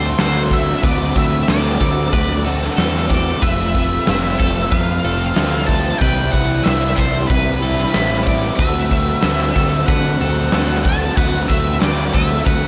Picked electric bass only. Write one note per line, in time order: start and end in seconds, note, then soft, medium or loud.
0.00 0.14 D2 medium
0.19 0.74 D2 medium
0.84 1.11 D2 medium
1.16 1.43 D2 medium
1.49 1.76 D2 medium
1.81 2.08 D2 medium
2.13 2.68 D2 medium
2.78 3.33 E2 medium
3.43 3.97 F1 medium
4.08 4.35 F1 medium
4.40 4.67 F1 medium
4.72 4.99 F2 medium
5.04 5.32 F1 loud
5.37 5.91 D2 medium
6.01 6.29 C2 loud
6.34 6.61 C2 medium
6.67 6.94 C2 medium
6.98 7.25 C2 medium
7.30 7.85 C2 loud
7.94 8.49 A1 medium
8.58 9.13 D2 medium
9.24 9.51 D2 medium
9.56 9.83 D2 medium
9.88 10.16 D3 medium
10.21 10.48 D2 loud
10.54 11.08 D2 medium
11.17 11.45 D2 medium
11.50 11.77 D2 medium
11.82 12.10 D2 medium
12.14 12.42 D2 medium
12.46 12.68 D2 medium